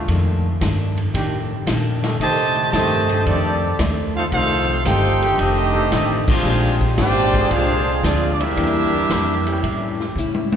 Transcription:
0.08 upright bass F2, steel-string acoustic guitar F2 D#3 A3 D4, kick, ride
0.61 steel-string acoustic guitar F2 D#3 A3 D4, upright bass G2, kick, snare, hi-hat pedal, ride
0.97 ride
1.13 steel-string acoustic guitar F2 D#3 A3, upright bass A2, trombone section D#3 A3 D4 G4, kick, ride
1.17 steel-string acoustic guitar D4
1.66 steel-string acoustic guitar F2 D#3 A3 D4, upright bass A#2, kick, snare, hi-hat pedal, ride
2.03 trombone section D#3 A3 D4 A4, snare, ride
2.20 steel-string acoustic guitar F2 D#3 A3 D4, upright bass C3, trombone section C3 D#3 A3, trumpet section G4 C5 D#5 A5, kick, ride
2.72 steel-string acoustic guitar F2 D#3 A3 D4, upright bass G2, trombone section C3 D#3 A3, trumpet section G4 C5 D#5 A5, kick, snare, hi-hat pedal, ride
3.08 trombone section D#3 A3 D4 G4, ride
3.25 steel-string acoustic guitar F2 D#3 A3 D4, upright bass F2, trombone section D#3 A3 D4, trumpet section C4 G4 A4 D5, kick, ride
3.79 upright bass D#2, steel-string acoustic guitar F2 D#3 A3 D4, kick, snare, hi-hat pedal, ride
4.15 trombone section A3 C4 F4, trumpet section D#4 A4 C5 F5
4.32 upright bass C2, steel-string acoustic guitar F2 D#3 A3 D4, trombone section A3 C4 F4, trumpet section D#4 A4 C5 F5, kick, ride
4.85 upright bass G1, steel-string acoustic guitar F2 D#3 A3 D4, trombone section C4 D#4 G4, trumpet section D#4 A4 C5 G5, kick, snare, hi-hat pedal, ride
5.20 trombone section D#3 A3 D4 G4, ride
5.38 upright bass F1, steel-string acoustic guitar F2 D#3 A3 D4, trombone section A3 C4 D#4, trumpet section C4 G4 A4 D#5, kick, ride
5.72 trombone section D#3 A3 D4 G4
5.91 upright bass A1, steel-string acoustic guitar F2 D#3 A3 D4, kick, snare, hi-hat pedal, ride
6.28 trombone section G#3 D4 F4, trumpet section D4 G#4 C5 F5, kick, crash
6.43 upright bass A#1, steel-string acoustic guitar A#2 G#3 D4, trombone section D3 G#3 C4 G4
6.47 steel-string acoustic guitar G4
6.81 kick
6.97 upright bass G#1, steel-string acoustic guitar A#2 G#3 D4 G4, trombone section G#3 D4 G4, trumpet section F4 C5 D5 G5, kick, snare, hi-hat pedal, ride
7.33 trombone section D3 G#3 C4 G#4, kick, ride
7.50 upright bass C2, steel-string acoustic guitar A#2 G#3 D4 G4, trombone section G#3 D4 F4, trumpet section D4 G#4 C5 F5, kick, ride
8.03 upright bass D2, steel-string acoustic guitar A#2 G#3 D4 G4, trombone section F3 G#3 D4, trumpet section C4 F4 G#4 D5, kick, snare, hi-hat pedal, ride
8.32 trumpet section D5
8.40 trombone section G3 A#3 E4, trumpet section D4 G4 A#4 E5, ride
8.56 upright bass E2, steel-string acoustic guitar E3 A#3 D4 G4, trombone section E3 A#3 D4 G4, kick, ride
9.10 upright bass F2, steel-string acoustic guitar E3 A#3 D4 G4, kick, snare, hi-hat pedal, ride
9.46 trombone section E3 A3 C#4 G4, ride
9.63 upright bass A2, steel-string acoustic guitar A2 G3 C#4 E4, kick, ride
10.00 snare
10.15 steel-string acoustic guitar A2 G3 C#4 E4, upright bass C#3, hi-hat pedal
10.34 high tom
10.52 high tom

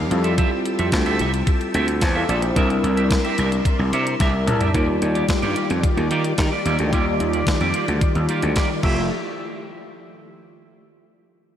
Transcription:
Already playing: string machine G4 G5
0.10 slap bass F2, tine electric piano G3 C4 E4 F4 A4, string machine A5 E6, muted clean electric guitar stroke, closed hi-hat
0.24 clean electric guitar C4 G4 A4 E5, closed hi-hat
0.37 clean electric guitar C4 G4 A4 E5, kick, closed hi-hat
0.51 muted clean electric guitar stroke
0.65 muted clean electric guitar stroke, closed hi-hat
0.79 slap bass F2, clean electric guitar C4 G4 A4 E5, closed hi-hat
0.92 slap bass D2, muted clean electric guitar stroke, kick, snare, clap, closed hi-hat
1.06 clean electric guitar C4 G4 A4 E5, closed hi-hat
1.19 slap bass C2, clean electric guitar C4 G4 A4 E5, closed hi-hat
1.34 muted clean electric guitar stroke, closed hi-hat
1.47 muted clean electric guitar stroke, kick, closed hi-hat
1.61 muted clean electric guitar stroke, closed hi-hat
1.74 slap bass D2, clean electric guitar C4 G4 A4 E5, closed hi-hat
1.88 muted clean electric guitar stroke, closed hi-hat
2.01 slap bass E2, tine electric piano C5 A5, muted clean electric guitar stroke, kick, snare, clap, closed hi-hat
2.15 clean electric guitar C4 G4 A4 E5, tine electric piano A4 F5
2.29 slap bass A#1, clean electric guitar C4 G4 A4 E5, tine electric piano F4 D5, closed hi-hat
2.42 tine electric piano E4 C5, muted clean electric guitar stroke, closed hi-hat
2.55 slap bass C2, tine electric piano G3 C4 D4 E4 A#4, clean electric guitar D4 G4 A#4 E5, string machine A#4 D5 C6, kick, closed hi-hat
2.70 muted clean electric guitar stroke, closed hi-hat
2.83 slap bass C2, muted clean electric guitar stroke, closed hi-hat
2.97 clean electric guitar D4 G4 A#4 E5, closed hi-hat
3.11 muted clean electric guitar stroke, kick, snare, clap, closed hi-hat
3.24 clean electric guitar D4 G4 A#4 E5, closed hi-hat
3.38 slap bass C2, clean electric guitar D4 G4 A#4 E5, closed hi-hat
3.52 muted clean electric guitar stroke, closed hi-hat
3.65 muted clean electric guitar stroke, kick, closed hi-hat
3.79 slap bass C2, muted clean electric guitar stroke
3.93 slap bass C3, clean electric guitar D4 G4 A#4 E5, closed hi-hat
4.07 closed hi-hat
4.20 slap bass C2, clean electric guitar D4 G4 A#4 E5, tine electric piano E5, kick, snare, closed hi-hat
4.34 muted clean electric guitar stroke
4.47 slap bass C2, tine electric piano A5, muted clean electric guitar stroke, closed hi-hat, mid tom
4.61 clean electric guitar D4 G4 A#4 E5, closed hi-hat, floor tom
4.74 slap bass D#2, string machine D#3 F4 G4 D5, tine electric piano G3 D#4 F4 C#5, clean electric guitar A#3 F4 G4 D5, kick, closed hi-hat
4.82 tine electric piano D5
4.88 muted clean electric guitar stroke
5.02 slap bass D#2, muted clean electric guitar stroke, closed hi-hat
5.15 clean electric guitar A#3 F4 G4 D5, closed hi-hat
5.29 muted clean electric guitar stroke, kick, snare, clap, closed hi-hat
5.42 slap bass G2, clean electric guitar A#3 F4 G4 D5, closed hi-hat
5.56 clean electric guitar A#3 F4 G4 D5, closed hi-hat
5.70 slap bass F2, closed hi-hat
5.83 muted clean electric guitar stroke, kick, closed hi-hat
5.97 slap bass D#2, muted clean electric guitar stroke, closed hi-hat
6.10 slap bass D#3, clean electric guitar A#3 F4 G4 D5, closed hi-hat
6.24 muted clean electric guitar stroke, closed hi-hat
6.38 slap bass D#3, muted clean electric guitar stroke, kick, snare, clap, closed hi-hat
6.52 clean electric guitar A#3 F4 G4 D5
6.65 slap bass D#2, clean electric guitar A#3 F4 G4 D5, closed hi-hat
6.79 slap bass D2, muted clean electric guitar stroke, closed hi-hat
6.92 slap bass D#2, tine electric piano G3 D#4 F4 D5, clean electric guitar A#3 F4 G4 D5, kick, closed hi-hat
7.06 muted clean electric guitar stroke
7.20 slap bass D#2, muted clean electric guitar stroke, closed hi-hat
7.33 clean electric guitar A#3 F4 G4 D5, closed hi-hat
7.47 muted clean electric guitar stroke, kick, snare, clap, closed hi-hat
7.61 slap bass F2, clean electric guitar A#3 F4 G4 D5, closed hi-hat
7.74 clean electric guitar A#3 F4 G4 D5, closed hi-hat
7.88 slap bass D2, muted clean electric guitar stroke, closed hi-hat
8.01 muted clean electric guitar stroke, kick, closed hi-hat
8.15 slap bass D#2, muted clean electric guitar stroke, closed hi-hat
8.29 clean electric guitar A#3 F4 G4 D5, closed hi-hat
8.42 slap bass D2, muted clean electric guitar stroke, closed hi-hat
8.56 clean electric guitar A#3 F4 G4 D5, kick, snare, clap, closed hi-hat
8.70 muted clean electric guitar stroke
8.83 slap bass F1, tine electric piano A3 F4 G4 E5, clean electric guitar A3 E4 G4 C5, kick, crash

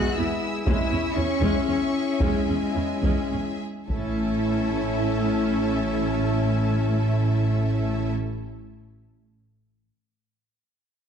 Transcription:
Already playing: viola section G#3 B3, french horn section G#3 E4, woodwind section B3 E4 G#4 E5, cello section F#4, violin section G#4 E5 F#6
0.17 double bass section E2, viola section B3, cello section E4, violin section E6
0.66 double bass section E2, viola section G#3 C#4, french horn section C#4 E4, woodwind section C#4 E4 E5, cello section E4, violin section G#4 E5 E6, taiko
0.91 double bass section E2, viola section C#4
1.16 double bass section E2, cello section C#4, viola section C#4 E4, violin section C#6
1.41 double bass section E2, viola section G#3 C#4, taiko
1.67 double bass section E2, cello section C#4, viola section C#4, violin section C#6
2.20 double bass section E2, cello section G#3, viola section G#3 C#4, violin section G#5, taiko
2.48 double bass section E2, viola section C#4
2.75 double bass section E2, viola section C#4 E4
3.03 double bass section E2, viola section G#3 C#4, taiko
3.31 double bass section E2, viola section C#4
3.88 double bass section A1, timpani A2, cello section A3, woodwind section C#4 E4 A4 E5, french horn section C#4 E4, viola section C#4 E4, violin section A4 E5 A5, taiko

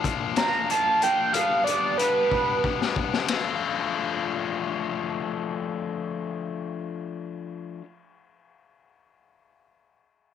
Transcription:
0.04 overdriven electric guitar F3 A#3 D4, kick, closed hi-hat
0.36 overdriven electric guitar A#3 D4, analog synth lead A#5, snare, closed hi-hat
0.69 overdriven electric guitar F3 A#3 D4, analog synth lead A5, closed hi-hat
1.01 overdriven electric guitar A#3 D4, analog synth lead G5, closed hi-hat
1.32 overdriven electric guitar G3 B3 D4, analog synth lead F5, closed hi-hat
1.64 overdriven electric guitar D4, analog synth lead D5, closed hi-hat
1.69 overdriven electric guitar B3
1.98 overdriven electric guitar G3 B3 D4, analog synth lead B4, closed hi-hat
2.31 overdriven electric guitar B3 D4, kick
2.63 overdriven electric guitar G3 B3 D4, kick
2.82 snare
2.95 overdriven electric guitar B3 D4, kick
3.14 snare
3.28 overdriven electric guitar F3 A3 D4 F4, snare, ride bell

